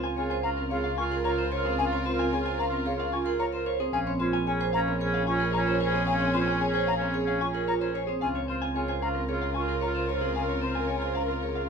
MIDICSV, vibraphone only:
0, 0, Header, 1, 2, 480
1, 0, Start_track
1, 0, Tempo, 535714
1, 1598, Time_signature, 4, 2, 24, 8
1, 10475, End_track
2, 0, Start_track
2, 0, Title_t, "Vibraphone"
2, 0, Program_c, 0, 11
2, 46, Note_on_c, 0, 60, 70
2, 158, Note_on_c, 0, 68, 71
2, 197, Note_off_c, 0, 60, 0
2, 278, Note_on_c, 0, 72, 91
2, 315, Note_off_c, 0, 68, 0
2, 405, Note_on_c, 0, 61, 72
2, 435, Note_off_c, 0, 72, 0
2, 519, Note_on_c, 0, 60, 72
2, 557, Note_off_c, 0, 61, 0
2, 640, Note_on_c, 0, 68, 86
2, 675, Note_off_c, 0, 60, 0
2, 759, Note_on_c, 0, 61, 67
2, 795, Note_off_c, 0, 68, 0
2, 882, Note_on_c, 0, 65, 79
2, 915, Note_off_c, 0, 61, 0
2, 1000, Note_on_c, 0, 70, 91
2, 1036, Note_off_c, 0, 65, 0
2, 1120, Note_on_c, 0, 65, 82
2, 1155, Note_off_c, 0, 70, 0
2, 1236, Note_on_c, 0, 70, 79
2, 1275, Note_off_c, 0, 65, 0
2, 1361, Note_on_c, 0, 72, 93
2, 1394, Note_off_c, 0, 70, 0
2, 1482, Note_on_c, 0, 60, 75
2, 1516, Note_off_c, 0, 72, 0
2, 1605, Note_on_c, 0, 61, 77
2, 1636, Note_off_c, 0, 60, 0
2, 1728, Note_on_c, 0, 60, 98
2, 1757, Note_off_c, 0, 61, 0
2, 1843, Note_on_c, 0, 65, 87
2, 1878, Note_off_c, 0, 60, 0
2, 1963, Note_on_c, 0, 60, 82
2, 1996, Note_off_c, 0, 65, 0
2, 2087, Note_on_c, 0, 68, 82
2, 2116, Note_off_c, 0, 60, 0
2, 2204, Note_on_c, 0, 72, 96
2, 2238, Note_off_c, 0, 68, 0
2, 2321, Note_on_c, 0, 61, 75
2, 2357, Note_off_c, 0, 72, 0
2, 2436, Note_on_c, 0, 60, 81
2, 2476, Note_off_c, 0, 61, 0
2, 2561, Note_on_c, 0, 68, 97
2, 2594, Note_off_c, 0, 60, 0
2, 2686, Note_on_c, 0, 61, 79
2, 2716, Note_off_c, 0, 68, 0
2, 2800, Note_on_c, 0, 65, 81
2, 2837, Note_off_c, 0, 61, 0
2, 2919, Note_on_c, 0, 70, 100
2, 2955, Note_off_c, 0, 65, 0
2, 3042, Note_on_c, 0, 65, 83
2, 3075, Note_off_c, 0, 70, 0
2, 3158, Note_on_c, 0, 70, 85
2, 3196, Note_off_c, 0, 65, 0
2, 3282, Note_on_c, 0, 72, 95
2, 3315, Note_off_c, 0, 70, 0
2, 3405, Note_on_c, 0, 60, 83
2, 3436, Note_off_c, 0, 72, 0
2, 3529, Note_on_c, 0, 61, 77
2, 3557, Note_off_c, 0, 60, 0
2, 3646, Note_on_c, 0, 60, 103
2, 3678, Note_off_c, 0, 61, 0
2, 3763, Note_on_c, 0, 65, 94
2, 3797, Note_off_c, 0, 60, 0
2, 3885, Note_on_c, 0, 60, 80
2, 3916, Note_off_c, 0, 65, 0
2, 4006, Note_on_c, 0, 68, 82
2, 4037, Note_off_c, 0, 60, 0
2, 4127, Note_on_c, 0, 72, 104
2, 4157, Note_off_c, 0, 68, 0
2, 4250, Note_on_c, 0, 61, 80
2, 4278, Note_off_c, 0, 72, 0
2, 4371, Note_on_c, 0, 60, 81
2, 4399, Note_off_c, 0, 61, 0
2, 4490, Note_on_c, 0, 68, 105
2, 4519, Note_off_c, 0, 60, 0
2, 4610, Note_on_c, 0, 61, 78
2, 4639, Note_off_c, 0, 68, 0
2, 4725, Note_on_c, 0, 65, 85
2, 4759, Note_off_c, 0, 61, 0
2, 4840, Note_on_c, 0, 70, 103
2, 4877, Note_off_c, 0, 65, 0
2, 4965, Note_on_c, 0, 65, 91
2, 4995, Note_off_c, 0, 70, 0
2, 5085, Note_on_c, 0, 70, 88
2, 5117, Note_off_c, 0, 65, 0
2, 5201, Note_on_c, 0, 72, 102
2, 5237, Note_off_c, 0, 70, 0
2, 5316, Note_on_c, 0, 60, 81
2, 5355, Note_off_c, 0, 72, 0
2, 5437, Note_on_c, 0, 61, 74
2, 5474, Note_off_c, 0, 60, 0
2, 5561, Note_on_c, 0, 60, 108
2, 5594, Note_off_c, 0, 61, 0
2, 5679, Note_on_c, 0, 65, 97
2, 5716, Note_off_c, 0, 60, 0
2, 5797, Note_on_c, 0, 60, 81
2, 5835, Note_off_c, 0, 65, 0
2, 5919, Note_on_c, 0, 68, 81
2, 5954, Note_off_c, 0, 60, 0
2, 6036, Note_on_c, 0, 72, 108
2, 6075, Note_off_c, 0, 68, 0
2, 6163, Note_on_c, 0, 61, 75
2, 6194, Note_off_c, 0, 72, 0
2, 6282, Note_on_c, 0, 60, 81
2, 6316, Note_off_c, 0, 61, 0
2, 6397, Note_on_c, 0, 68, 98
2, 6436, Note_off_c, 0, 60, 0
2, 6520, Note_on_c, 0, 61, 73
2, 6554, Note_off_c, 0, 68, 0
2, 6642, Note_on_c, 0, 65, 78
2, 6675, Note_off_c, 0, 61, 0
2, 6761, Note_on_c, 0, 70, 98
2, 6796, Note_off_c, 0, 65, 0
2, 6883, Note_on_c, 0, 65, 82
2, 6916, Note_off_c, 0, 70, 0
2, 7003, Note_on_c, 0, 70, 80
2, 7036, Note_off_c, 0, 65, 0
2, 7126, Note_on_c, 0, 72, 96
2, 7156, Note_off_c, 0, 70, 0
2, 7243, Note_on_c, 0, 60, 73
2, 7277, Note_off_c, 0, 72, 0
2, 7365, Note_on_c, 0, 61, 78
2, 7396, Note_off_c, 0, 60, 0
2, 7484, Note_on_c, 0, 60, 98
2, 7517, Note_off_c, 0, 61, 0
2, 7637, Note_off_c, 0, 60, 0
2, 7721, Note_on_c, 0, 60, 71
2, 7845, Note_on_c, 0, 68, 71
2, 7876, Note_off_c, 0, 60, 0
2, 7960, Note_on_c, 0, 72, 93
2, 7997, Note_off_c, 0, 68, 0
2, 8086, Note_on_c, 0, 61, 70
2, 8115, Note_off_c, 0, 72, 0
2, 8209, Note_on_c, 0, 60, 70
2, 8237, Note_off_c, 0, 61, 0
2, 8321, Note_on_c, 0, 68, 89
2, 8358, Note_off_c, 0, 60, 0
2, 8440, Note_on_c, 0, 61, 61
2, 8476, Note_off_c, 0, 68, 0
2, 8562, Note_on_c, 0, 65, 66
2, 8595, Note_off_c, 0, 61, 0
2, 8683, Note_on_c, 0, 70, 84
2, 8716, Note_off_c, 0, 65, 0
2, 8804, Note_on_c, 0, 65, 69
2, 8836, Note_off_c, 0, 70, 0
2, 8927, Note_on_c, 0, 70, 67
2, 8957, Note_off_c, 0, 65, 0
2, 9045, Note_on_c, 0, 72, 82
2, 9078, Note_off_c, 0, 70, 0
2, 9164, Note_on_c, 0, 60, 61
2, 9197, Note_off_c, 0, 72, 0
2, 9284, Note_on_c, 0, 61, 63
2, 9317, Note_off_c, 0, 60, 0
2, 9400, Note_on_c, 0, 60, 83
2, 9437, Note_off_c, 0, 61, 0
2, 9555, Note_off_c, 0, 60, 0
2, 9637, Note_on_c, 0, 60, 60
2, 9759, Note_on_c, 0, 68, 60
2, 9794, Note_off_c, 0, 60, 0
2, 9876, Note_on_c, 0, 72, 81
2, 9915, Note_off_c, 0, 68, 0
2, 9993, Note_on_c, 0, 61, 61
2, 10034, Note_off_c, 0, 72, 0
2, 10118, Note_on_c, 0, 60, 60
2, 10153, Note_off_c, 0, 61, 0
2, 10242, Note_on_c, 0, 68, 73
2, 10274, Note_off_c, 0, 60, 0
2, 10360, Note_on_c, 0, 61, 58
2, 10396, Note_off_c, 0, 68, 0
2, 10475, Note_off_c, 0, 61, 0
2, 10475, End_track
0, 0, End_of_file